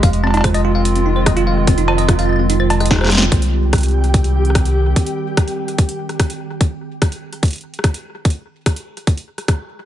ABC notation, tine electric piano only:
X:1
M:4/4
L:1/16
Q:1/4=146
K:Cm
V:1 name="Tine electric piano"
f z C E c e F f z C E c e F f z | C E c e F f z C E c z e E c z C | z16 | z16 |
z16 | z16 |]